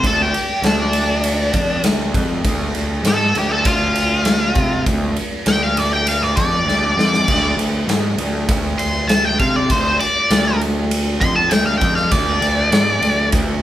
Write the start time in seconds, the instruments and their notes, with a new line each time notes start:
0.04 picked electric bass D2, lead electric guitar A4, kick, ride
0.22 lead electric guitar G4
0.34 ride
0.62 picked electric bass D2, snare, ride
0.66 lead electric guitar D4
0.93 ride
1.24 ride
1.54 picked electric bass F2, kick, ride
1.84 picked electric bass D2, snare, ride
2.14 picked electric bass F2, kick, snare, ride
2.44 picked electric bass D2, kick, ride
2.75 picked electric bass D2, ride
3.03 picked electric bass G#2, snare, ride
3.08 lead electric guitar A4
3.35 picked electric bass D2, lead electric guitar G4, ride
3.51 lead electric guitar A4
3.65 picked electric bass D2, lead electric guitar F4, kick, ride
3.96 ride
4.25 snare, ride
4.55 picked electric bass C3, kick, ride
4.86 picked electric bass D2, kick, ride
5.17 ride
5.46 picked electric bass D2, lead electric guitar G5, snare, ride
5.64 lead electric guitar F5
5.77 lead electric guitar D5, ride
5.93 lead electric guitar G5
6.07 lead electric guitar F5, ride
6.22 lead electric guitar D5
6.37 picked electric bass F2, lead electric guitar D5, kick, ride
6.65 picked electric bass D2, snare
6.96 picked electric bass F2, snare
7.14 snare
7.28 picked electric bass D2, kick, crash
7.57 picked electric bass D2, ride
7.87 picked electric bass G#2, snare, ride
8.17 picked electric bass D2, ride
8.49 picked electric bass D2, kick, ride
8.78 lead electric guitar C6, ride
9.08 lead electric guitar A5, snare, ride
9.25 lead electric guitar G5
9.39 picked electric bass C3, lead electric guitar F5, kick, ride
9.56 lead electric guitar D5
9.70 picked electric bass D2, lead electric guitar C5, kick, ride
10.00 lead electric guitar D5, ride
10.30 picked electric bass D2, snare, ride
10.61 ride
10.91 ride
11.21 picked electric bass F2, lead electric guitar C6, kick, ride
11.36 lead electric guitar A5
11.49 picked electric bass D2, lead electric guitar G5, snare, ride
11.66 lead electric guitar F5
11.78 lead electric guitar G5, kick, ride
11.82 picked electric bass F2
11.95 lead electric guitar F5, snare
12.11 picked electric bass D2, lead electric guitar D5, kick, ride
12.41 picked electric bass D2, ride
12.72 picked electric bass G#2, snare, ride
13.01 picked electric bass D2, ride
13.32 picked electric bass D2, kick, ride